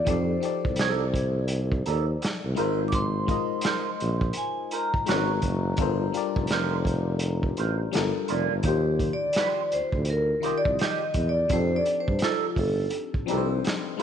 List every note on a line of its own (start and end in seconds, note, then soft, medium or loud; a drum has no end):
0.05 0.37 F2 loud
0.05 0.35 F3 medium
0.05 0.36 D#4 medium
0.05 0.37 G4 medium
0.05 0.37 A4 medium
0.05 2.17 C5 medium
0.05 kick loud
0.05 closed hi-hat medium
0.10 0.38 D5 medium
0.40 1.54 F3 medium
0.40 1.55 D#4 medium
0.40 1.56 G4 medium
0.40 1.56 A4 medium
0.40 closed hi-hat medium
0.45 1.57 D5 medium
0.65 1.82 C2 medium
0.65 kick medium
0.76 1.02 D#4 medium
0.76 snare loud
0.76 closed hi-hat medium
0.80 1.03 A4 medium
0.80 1.03 D5 medium
1.14 kick medium
1.14 closed hi-hat medium
1.48 closed hi-hat medium
1.72 kick medium
1.86 2.16 D#2 medium
1.86 2.04 D#4 medium
1.86 2.04 A4 medium
1.86 2.05 D5 medium
1.86 closed hi-hat medium
2.21 muted clean electric guitar stroke soft
2.21 snare loud
2.21 closed hi-hat medium
2.45 2.56 C2 medium
2.55 3.16 G#3 medium
2.55 3.17 D#4 medium
2.55 2.80 F4 medium
2.55 3.17 F4 medium
2.55 2.80 A#4 medium
2.55 3.18 A#4 medium
2.55 closed hi-hat medium
2.59 3.35 G#1 medium
2.59 2.81 C5 medium
2.59 3.18 C5 loud
2.88 2.93 D6 medium
2.88 closed hi-hat medium
2.93 4.41 C6 loud
2.93 kick loud
3.26 4.40 G#3 medium
3.26 4.41 D#4 medium
3.26 4.41 F4 medium
3.26 4.42 A#4 medium
3.26 kick medium
3.26 closed hi-hat medium
3.31 4.43 D#5 medium
3.61 3.87 F4 medium
3.61 snare loud
3.61 closed hi-hat medium
3.65 3.87 A#4 medium
3.65 3.88 C5 medium
4.00 4.30 A#1 medium
4.00 closed hi-hat medium
4.21 kick medium
4.33 closed hi-hat medium
4.37 4.73 G#5 medium
4.71 4.90 F4 soft
4.71 4.90 A#4 medium
4.71 4.91 C5 medium
4.71 7.89 A#5 medium
4.71 closed hi-hat medium
4.94 kick medium
5.06 5.45 G#1 medium
5.06 5.67 G#3 medium
5.06 5.30 C#4 medium
5.06 5.67 D#4 medium
5.06 5.67 F#4 medium
5.06 5.30 F#4 medium
5.06 5.68 A#4 medium
5.06 5.31 B4 medium
5.06 5.68 B4 medium
5.06 snare loud
5.06 closed hi-hat medium
5.10 5.69 C#5 medium
5.42 5.72 F#1 medium
5.42 kick medium
5.42 closed hi-hat medium
5.77 6.08 G1 loud
5.77 6.07 G3 medium
5.77 6.08 D4 medium
5.77 6.08 F4 medium
5.77 6.09 A4 medium
5.77 kick loud
5.77 closed hi-hat medium
5.81 6.09 A#4 medium
5.81 6.10 C5 medium
6.12 7.26 G3 medium
6.12 7.27 D4 medium
6.12 7.27 F4 medium
6.12 7.28 G4 medium
6.12 7.28 A#4 medium
6.12 closed hi-hat medium
6.17 7.29 D5 medium
6.36 7.53 F1 medium
6.36 kick medium
6.47 6.73 F4 medium
6.47 snare loud
6.47 closed hi-hat medium
6.52 6.74 A#4 medium
6.52 6.74 C5 loud
6.85 kick medium
6.85 closed hi-hat medium
7.19 closed hi-hat medium
7.43 kick medium
7.57 7.87 A1 medium
7.57 7.76 F4 soft
7.57 7.76 A#4 medium
7.57 7.77 C5 medium
7.57 closed hi-hat medium
7.91 8.11 G1 medium
7.91 8.52 G3 medium
7.91 8.53 D4 medium
7.91 8.53 F4 medium
7.91 8.54 A4 medium
7.91 muted clean electric guitar stroke soft
7.91 snare loud
7.91 closed hi-hat medium
7.97 8.55 A#4 medium
8.28 8.47 F1 medium
8.28 8.51 F4 medium
8.28 8.52 A#4 medium
8.28 8.52 D5 medium
8.28 closed hi-hat medium
8.51 8.62 G1 medium
8.63 9.12 D#2 loud
8.63 9.77 D#3 medium
8.63 9.77 D#4 medium
8.63 9.78 F4 medium
8.63 9.09 G4 medium
8.63 kick loud
8.63 closed hi-hat medium
8.67 9.79 G4 medium
8.67 9.79 C5 medium
8.99 kick medium
8.99 closed hi-hat medium
9.13 9.74 D5 medium
9.23 9.28 D2 soft
9.33 9.59 F4 medium
9.33 snare loud
9.33 closed hi-hat medium
9.37 9.60 G4 medium
9.37 9.60 C5 medium
9.72 9.81 D2 soft
9.72 10.05 C5 medium
9.72 closed hi-hat medium
9.92 10.34 D2 medium
9.92 kick medium
10.05 closed hi-hat medium
10.10 10.53 A#4 medium
10.40 11.28 D#3 medium
10.40 11.29 D#4 medium
10.40 11.29 F4 medium
10.40 10.61 F4 medium
10.40 10.62 G4 medium
10.40 11.30 G4 medium
10.40 closed hi-hat medium
10.45 10.53 C2 soft
10.45 10.62 C5 medium
10.45 11.31 D#5 medium
10.58 10.68 D5 medium
10.65 10.77 C2 medium
10.65 kick medium
10.79 11.02 F4 medium
10.79 11.02 G4 medium
10.79 11.03 C5 medium
10.79 11.29 D#5 medium
10.79 snare loud
10.79 closed hi-hat medium
11.14 11.44 E2 medium
11.14 kick medium
11.14 closed hi-hat medium
11.29 11.52 D5 medium
11.48 11.80 F2 loud
11.48 12.62 F3 medium
11.48 12.63 C4 medium
11.48 12.63 D4 medium
11.48 12.64 D#4 medium
11.48 12.64 G4 medium
11.48 kick loud
11.48 closed hi-hat medium
11.52 12.65 A4 medium
11.52 11.75 C5 medium
11.76 11.99 D5 medium
11.86 closed hi-hat medium
12.00 12.23 C5 medium
12.08 12.20 G2 medium
12.08 kick medium
12.19 12.44 D#4 medium
12.19 snare loud
12.19 closed hi-hat medium
12.23 12.59 F4 medium
12.23 12.45 A4 medium
12.23 12.45 D5 medium
12.56 12.86 G1 medium
12.56 12.91 A4 medium
12.56 kick medium
12.56 open hi-hat soft
12.90 closed hi-hat medium
13.14 kick medium
13.26 13.98 F3 medium
13.26 13.99 C4 medium
13.26 14.00 D4 medium
13.26 13.97 D#4 medium
13.26 13.47 D#4 soft
13.26 closed hi-hat medium
13.30 13.59 C2 medium
13.30 14.01 G4 medium
13.30 13.48 A4 medium
13.30 13.37 B4 medium
13.30 13.48 D5 medium
13.37 14.01 C5 medium
13.64 muted clean electric guitar stroke soft
13.64 snare loud
13.64 closed hi-hat medium
13.97 14.03 G#3 medium
13.97 14.03 D#4 medium
13.97 14.03 F4 medium
13.97 closed hi-hat medium